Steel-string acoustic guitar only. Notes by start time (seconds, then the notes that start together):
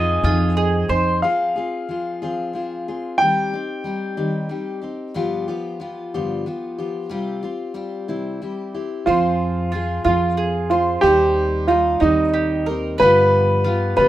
Already playing: F3 C4 D#4 G#4
0.25 F3 C4 D#4 G#4
0.90 C4 D#4 G#4
1.23 F3 C4 F4 G#4
1.56 C4 F4 G#4
1.89 F3 C4 F4 G#4
2.22 F3 C4 F4 G#4
2.53 F3 C4 F4 G#4
2.88 C4 F4 G#4
3.20 D#3 G3 C4 D#4 G4
3.53 C4 D#4 G4
3.84 G3 C4 D#4 G4
4.17 D#3 G3 C4 D#4 G4
4.49 G3 C4 D#4 G4
4.82 C4 D#4 G4
5.14 G2 D3 F3 B3 F4 G4
5.48 F3 B3 F4 G4
5.80 F3 B3 F4 G4
6.14 G2 D3 F3 B3 F4 G4
6.46 F3 B3 F4 G4
6.78 F3 B3 F4 G4
7.09 C3 G3 C4 F4 G4
7.43 C4 F4 G4
7.74 G3 C4 F4 G4
8.08 C3 G3 C4 E4 G4
8.42 G3 C4 E4 G4
8.74 C4 E4 G4
9.07 F3 C4 F4 G#4
9.73 F3 C4 F4 G#4
10.07 F3 C4 F4 G#4
10.72 C4 F4 G#4
11.05 D#3 G3 C4 D#4 G4
11.69 G3 C4 D#4 G4
12.02 D#3 G3 C4 D#4 G4
12.68 C4 D#4 G4
13.02 G2 D3 F3 B3 F4 G4
13.65 F3 B3 F4 G4
13.99 G2 D3 F3 B3 F4 G4